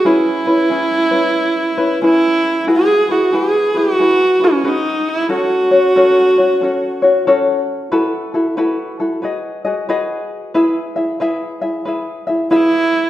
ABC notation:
X:1
M:4/4
L:1/8
Q:"Swing" 1/4=92
K:C#m
V:1 name="Ukulele"
[CEGB] [CEB] [CEGB] [CEB]2 [CEB] [CEGB]2 | [K:E] [EFGB] [EFB] [EFGB] [EFB] [EFGB] [EFB] [FGB]2 | [CFAc] [CFc] [CFAc] [CFc] [CFAc] [CFc] [CFAc]2 | [EFAB] [EFA] [EFAB] [EFA] [FGBd] [FGd] [FGBd]2 |
[EGBe] [EGe] [EGBe] [EGe] [EGBe] [EGe] [EGBe]2 |]
V:2 name="Viola"
E6 E2 | [K:E] G F G F2 C D E | F6 z2 | z8 |
z6 E2 |]